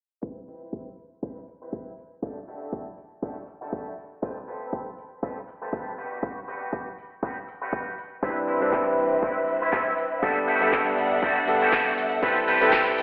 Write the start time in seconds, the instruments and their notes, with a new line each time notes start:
0.23 clean electric guitar C4 E4 B4, kick
0.48 clean electric guitar C4 E4 B4, open hi-hat
0.73 kick
0.98 open hi-hat
1.23 clean electric guitar C4 E4 B4, kick
1.48 muted clean electric guitar stroke, open hi-hat
1.62 clean electric guitar C4 E4 B4
1.73 kick
1.98 open hi-hat
2.22 clean electric guitar D4 E4 F#4 G4 A4, kick
2.48 clean electric guitar D4 E4 F#4 G4 A4, open hi-hat
2.73 kick
2.98 open hi-hat
3.22 clean electric guitar D4 E4 F#4 G4 A4, kick
3.48 muted clean electric guitar stroke, open hi-hat
3.61 clean electric guitar D4 E4 F#4 G4 A4
3.73 kick
3.98 open hi-hat
4.22 clean electric guitar C4 G4 A4 B4, kick
4.48 clean electric guitar C4 G4 A4 B4, open hi-hat
4.73 kick
4.98 open hi-hat
5.22 clean electric guitar C4 G4 A4 B4, kick
5.48 muted clean electric guitar stroke, open hi-hat
5.62 clean electric guitar C4 G4 A4 B4
5.73 kick
5.98 clean electric guitar F#4 G4 B4, open hi-hat
6.23 kick
6.48 clean electric guitar F#4 G4 B4, open hi-hat
6.73 kick
6.98 open hi-hat
7.23 clean electric guitar F#4 G4 B4, kick
7.48 muted clean electric guitar stroke, open hi-hat
7.61 clean electric guitar F#4 G4 B4
7.73 kick
7.98 open hi-hat
8.22 electric grand piano G3 C4 D4 E4 B4, violin section C4 B4 E5, clean electric guitar C4 E4 B4, kick, closed hi-hat
8.48 clean electric guitar C4 E4 B4, open hi-hat
8.60 electric grand piano G3 C4 D4 E4 B4, closed hi-hat
8.73 kick, clap, closed hi-hat
8.87 closed hi-hat
8.98 open hi-hat
9.12 closed hi-hat
9.23 clean electric guitar C4 E4 B4, kick, closed hi-hat
9.48 muted clean electric guitar stroke, open hi-hat
9.61 clean electric guitar C4 E4 B4, closed hi-hat
9.73 kick, clap, closed hi-hat
9.98 open hi-hat
10.12 closed hi-hat
10.22 electric grand piano G3 B3 D4 A4 F#5, violin section G3 D4 A4 E5 F#5, clean electric guitar D4 E4 F#4 G4 A4, kick, closed hi-hat
10.48 clean electric guitar D4 E4 F#4 G4 A4, open hi-hat
10.60 electric grand piano G3 B3 D4 A4 F#5, closed hi-hat
10.73 kick, clap, closed hi-hat
10.86 closed hi-hat
10.98 open hi-hat
11.12 closed hi-hat
11.22 clean electric guitar D4 E4 F#4 G4 A4, kick, closed hi-hat
11.47 electric grand piano G3 B3 D4 A4 F#5, muted clean electric guitar stroke, open hi-hat
11.61 clean electric guitar D4 E4 F#4 G4 A4, closed hi-hat
11.73 kick, clap, closed hi-hat
11.98 open hi-hat
12.12 closed hi-hat
12.22 electric grand piano G3 C4 E4 A4 B4, clean electric guitar C4 G4 A4 B4, violin section B4 G5, kick, closed hi-hat
12.47 clean electric guitar C4 G4 A4 B4, open hi-hat
12.61 electric grand piano G3 C4 E4 A4 B4, closed hi-hat
12.73 kick, clap, closed hi-hat
12.87 closed hi-hat
12.98 open hi-hat